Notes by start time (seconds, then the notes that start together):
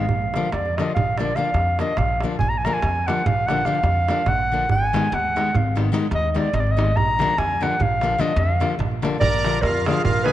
Already playing: F5
0.09 A#1, darbuka dum
0.22 darbuka tek
0.34 D3 F3 A#3 D4, darbuka tek
0.52 F2 D5, darbuka tek
0.66 darbuka tek
0.77 D3 F3 A#3 D4 D#5, darbuka tek
0.94 A#1 F5, darbuka dum
1.18 D3 F3 A#3 D4 D5, darbuka tek
1.36 D3 F3 A#3 D4 F5, darbuka tek
1.45 darbuka tek
1.54 F2, darbuka tek
1.79 D3 F3 A#3 D4 D#5, darbuka tek
1.97 A#1 F5, darbuka tek, darbuka dum
2.09 darbuka tek
2.21 D3 F3 A#3, darbuka tek
2.25 D4
2.39 A#1 G#5, darbuka dum
2.49 A#5, darbuka tek
2.58 G#5
2.65 D3 F3 A#3 D4 A#5, darbuka tek
2.74 G#5
2.82 F2, darbuka tek
2.96 darbuka tek
3.07 D3 F3 A#3 D4 F#5, darbuka tek
3.26 A#1 F5, darbuka dum
3.47 D3 F3 A#3 F#5, darbuka tek
3.51 D4
3.65 D3 F3 A#3 D4 F5, darbuka tek
3.75 darbuka tek
3.83 F2, darbuka tek
4.08 D3 F3 A#3 D4, darbuka tek
4.26 A#1 F#5, darbuka tek, darbuka dum
4.39 darbuka tek
4.52 D3 F3 A#3 D4
4.69 G#1 G#5, darbuka dum
4.81 darbuka tek
4.93 D#3 G#3 B3 D#4, darbuka tek
5.12 D#2 F#5, darbuka tek
5.25 darbuka tek
5.36 D#3 G#3 B3 D#4, darbuka tek
5.55 G#1 F5, darbuka dum
5.76 D#3 G#3 B3 D#4, darbuka tek
5.92 D#3 G#3 B3 D#4, darbuka tek
6.02 darbuka tek
6.11 D#2 D#5, darbuka tek
6.31 D#3 G#3 D#5
6.36 B3 D#4 D5, darbuka tek
6.53 G#1 D#5, darbuka tek, darbuka dum
6.60 D5
6.67 darbuka tek
6.71 D#5
6.77 D#3 G#3 B3 D#4, darbuka tek
6.96 A#1 A#5, darbuka dum
7.08 darbuka tek
7.19 D3 F3 A#3 D4, darbuka tek
7.29 darbuka tek
7.38 F2 G#5, darbuka tek
7.51 darbuka tek
7.60 D3 F3 A#3 D4 F#5, darbuka tek
7.80 A#1 F5, darbuka dum
7.91 darbuka tek
8.01 D3 F3 A#3 D4, darbuka tek
8.19 D3 F3 A#3 D4 D#5, darbuka tek
8.28 darbuka tek
8.36 F2 F5, darbuka tek
8.49 darbuka tek
8.60 D3 F3 A#3 D4, darbuka tek
8.71 darbuka tek
8.79 A#1, darbuka tek, darbuka dum
8.91 darbuka tek
9.02 D3 F3 A#3 D4, darbuka tek
9.20 A#1 A#4 D5, darbuka dum
9.45 D3 F3 A#3 D4, darbuka tek
9.62 F2 F4 A#4, darbuka tek
9.75 darbuka tek
9.86 D3 F3 A#3 D4 F4 G#4, darbuka tek
10.04 A#1 F4 A#4, darbuka dum
10.23 D3 F3 A#3 D4 G#4 B4, darbuka tek